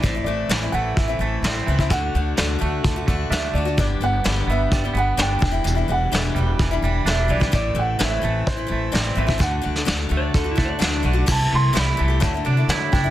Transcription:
<<
  \new Staff \with { instrumentName = "Grand piano" } { \time 4/4 \key d \mixolydian \tempo 4 = 128 d''8 d''4 fis''8 e''4. r8 | fis''2. e''8 d''8 | d''8 fis''4 e''4 fis''8 g''8 g''8~ | g''8 fis''2~ fis''8 e''8 d''8 |
d''8 fis''8 e''4 c''4 d''8 e''8 | fis''2. r4 | a''8 c'''8 b''4 a''4 r8 g''8 | }
  \new Staff \with { instrumentName = "Electric slide guitar" } { \time 4/4 \key d \mixolydian r1 | r1 | r1 | r1 |
r1 | r4 \tuplet 3/2 { r4 d''8 a'8 e'8 d''8 } d''8. r16 | r1 | }
  \new Staff \with { instrumentName = "Steel-string acoustic guitar" } { \time 4/4 \key d \mixolydian <a, e a c' e'>16 <a c' e'>16 <e a c' e'>8 <a, e a c' e'>16 <a c' e'>16 <e a c' e'>8. <a c' e'>16 <e a c' e'>8 <a, e a c' e'>8 <e a c' e'>16 <a c' e'>16 | <d a d' fis'>8 <d a d' fis'>8 <d a d' fis'>8 <d a d' fis'>8. <a d' fis'>16 <d a d' fis'>8 <d a d' fis'>8 <d a d' fis'>16 <a d' fis'>16 | <g, d g b d' g'>8 <g b d' g'>8 <g, d g b d' g'>8 <g b d' g'>8. <g b d' g'>16 <g b d' g'>8 <g, d g b d' g'>8 <e g d' e'>16 <e g d' e'>16 | <e, b, e g d' e'>16 <e g d' e'>16 <e g d' e'>8 <e, b, e g d' e'>8 <e g d' e'>8. <e g d' e'>16 <e g d' e'>8 <e, b, e g d' e'>8 <e g d' e'>16 <e g d' e'>16 |
<a, e a c' e'>8 <e a c' e'>8 <a, e a c' e'>8 <e a c' e'>8. <a c' e'>16 <e a c' e'>8 <a, e a c' e'>8 <e a c' e'>16 <a c' e'>16 | <d a d' fis'>8 <d a d' fis'>8 <d a d' fis'>8 <d a d' fis'>8. <a d' fis'>16 <d a d' fis'>8 <d a d' fis'>8 <d a d' fis'>16 <a d' fis'>16 | <c e a e' g'>4 <c e a e' g'>8 <e a e' g'>16 <a e' g'>16 <d fis a d' e'>16 <a d' e'>16 <fis a d' e'>16 <a d' e'>16 <d fis a d' e'>8 <fis a d' e'>16 <a d' e'>16 | }
  \new Staff \with { instrumentName = "Clean electric guitar" } { \clef bass \time 4/4 \key d \mixolydian a,4 e8 a8 e8 a8 c'8 e8 | d4 d8 a8 d8 a8 d'8 d8 | g,4 g8 b8 g8 b8 d'8 e,8 | e,4 e8 g8 e8 g8 d'8 e8 |
a,4 e8 a8 e8 a8 c'8 e8 | d4 d8 a8 d8 a8 d'8 d8 | c8 a8 e'8 a8 d8 d'8 e'8 d'8 | }
  \new Staff \with { instrumentName = "Upright bass" } { \clef bass \time 4/4 \key d \mixolydian a,,8 a,,8 a,,8 a,,8 a,,8 a,,8 a,,8 cis,8 | d,8 d,8 d,8 d,8 d,8 d,8 d,8 d,8 | g,,8 g,,8 g,,8 g,,8 g,,8 g,,8 g,,8 e,,8 | e,,8 e,,8 e,,8 e,,8 e,,8 e,,8 e,,8 b,,8 |
a,,8 a,,8 a,,8 a,,8 a,,8 a,,8 a,,8 a,,8 | d,8 d,8 d,8 d,8 d,8 d,8 d,8 b,,8 | c,8 c,8 c,8 c,8 d,8 c8 d8 fis,,8 | }
  \new DrumStaff \with { instrumentName = "Drums" } \drummode { \time 4/4 <hh bd>4 <hh sn>4 <hh bd>4 <hh sn>8. bd16 | <hh bd>4 <hh sn>4 <hh bd>8 bd8 <hh sn>4 | <hh bd>4 <hh sn>4 <hh bd>4 <hh sn>8 bd8 | hh4 <hh sn>4 <hh bd>4 <hh sn>8. bd16 |
<hh bd>4 <hh sn>4 <hh bd>4 <hh sn>8. bd16 | <hh bd>8. sn16 <hh sn>4 <hh bd>8 bd8 <hh sn>4 | <cymc bd>4 <hh sn>4 <hh bd>4 <hh sn>8 bd8 | }
>>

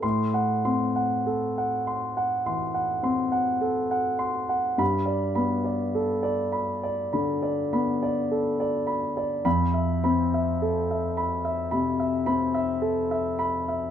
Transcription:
<<
  \new Staff \with { instrumentName = "Grand piano" } { \time 4/4 \key a \dorian \tempo 4 = 52 r16 fis''16 c'''16 fis''16 a'16 fis''16 c'''16 fis''16 c'''16 fis''16 c'''16 fis''16 a'16 fis''16 c'''16 fis''16 | r16 d''16 b''16 d''16 a'16 d''16 b''16 d''16 b''16 d''16 b''16 d''16 a'16 d''16 b''16 d''16 | r16 e''16 b''16 e''16 a'16 e''16 b''16 e''16 b''16 e''16 b''16 e''16 a'16 e''16 b''16 e''16 | }
  \new Staff \with { instrumentName = "Grand piano" } { \time 4/4 \key a \dorian <a, c'''>8 c'8 r4 e8 c'8 r4 | <g, b''>8 b8 r4 d8 b8 r4 | <f, b''>8 c'8 r4 c8 c'8 r4 | }
>>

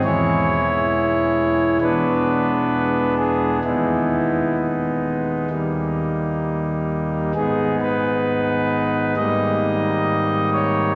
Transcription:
<<
  \new Staff \with { instrumentName = "Pipe organ" } { \time 4/4 \key gis \minor \tempo 4 = 66 cis''2 b'4. gis'8 | e'4 dis'2~ dis'8 r8 | gis'8 b'4. dis''4. cis''8 | }
  \new Staff \with { instrumentName = "Pipe organ" } { \clef bass \time 4/4 \key gis \minor <e,, e, e gis e'>2 <e,, e, gis b d'>2 | <dis,, dis, gis b dis'>2 <dis,, dis, g ais dis'>2 | <gis,, gis, gis b dis'>2 <gis,, gis, g ais dis'>2 | }
>>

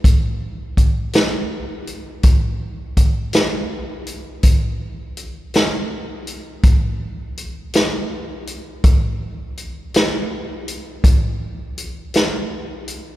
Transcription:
\new DrumStaff \with { instrumentName = "Drums" } \drummode { \time 12/8 \tempo 4. = 55 <hh bd>4 <hh bd>8 <hh sn>4 hh8 <hh bd>4 <hh bd>8 <hh sn>4 hh8 | <hh bd>4 hh8 <hh sn>4 hh8 <hh bd>4 hh8 <hh sn>4 hh8 | <hh bd>4 hh8 <hh sn>4 hh8 <hh bd>4 hh8 <hh sn>4 hh8 | }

